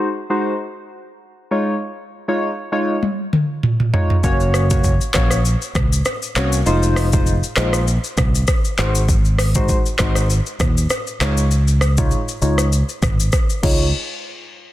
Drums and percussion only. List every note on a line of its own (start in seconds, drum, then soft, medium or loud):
3.03 high tom medium
3.33 mid tom medium
3.63 mid tom medium
3.80 mid tom medium
3.94 floor tom loud
4.10 floor tom medium
4.24 kick loud
4.24 shaker medium
4.40 shaker soft
4.54 cross-stick medium
4.54 shaker soft
4.70 kick medium
4.70 mid tom medium
4.70 shaker medium
4.84 kick medium
4.84 shaker medium
5.01 shaker medium
5.14 kick medium
5.14 cross-stick loud
5.14 clap loud
5.14 shaker medium
5.31 cross-stick medium
5.31 shaker loud
5.45 shaker medium
5.62 shaker soft
5.75 kick loud
5.75 cross-stick loud
5.75 mid tom loud
5.75 shaker medium
5.93 shaker medium
6.05 cross-stick loud
6.05 shaker medium
6.22 shaker medium
6.36 cross-stick medium
6.36 clap medium
6.36 shaker medium
6.53 shaker loud
6.66 shaker medium
6.83 shaker soft
6.96 cross-stick medium
6.96 open hi-hat medium
6.96 shaker medium
7.13 kick loud
7.13 mid tom medium
7.13 shaker medium
7.26 shaker medium
7.43 shaker soft
7.57 cross-stick loud
7.57 clap loud
7.57 shaker medium
7.73 cross-stick medium
7.73 shaker loud
7.88 shaker medium
8.04 shaker soft
8.17 kick loud
8.17 cross-stick loud
8.17 mid tom loud
8.17 shaker medium
8.35 shaker medium
8.47 kick loud
8.47 cross-stick loud
8.47 shaker medium
8.65 shaker medium
8.78 cross-stick medium
8.78 clap medium
8.78 shaker medium
8.95 shaker loud
9.09 kick loud
9.09 shaker medium
9.25 shaker soft
9.39 cross-stick medium
9.39 open hi-hat soft
9.39 shaker soft
9.55 kick loud
9.55 mid tom medium
9.55 shaker medium
9.68 kick medium
9.68 shaker medium
9.86 shaker medium
9.99 kick medium
9.99 cross-stick loud
9.99 clap loud
9.99 shaker medium
10.15 cross-stick medium
10.15 shaker loud
10.30 shaker medium
10.46 shaker soft
10.60 kick loud
10.60 cross-stick loud
10.60 mid tom loud
10.60 shaker medium
10.77 shaker medium
10.90 cross-stick loud
10.90 shaker medium
11.07 shaker medium
11.21 cross-stick medium
11.21 clap medium
11.21 shaker medium
11.38 shaker loud
11.51 shaker medium
11.68 shaker soft
11.81 cross-stick medium
11.81 shaker medium
11.98 kick loud
11.98 mid tom medium
11.98 shaker medium
12.11 shaker medium
12.28 shaker medium
12.42 shaker soft
12.58 cross-stick medium
12.58 shaker loud
12.73 shaker medium
12.89 shaker soft
13.03 kick loud
13.03 cross-stick loud
13.03 mid tom loud
13.03 shaker medium
13.20 shaker medium
13.32 kick loud
13.32 cross-stick loud
13.32 shaker medium
13.50 shaker medium
13.63 kick loud
13.63 crash medium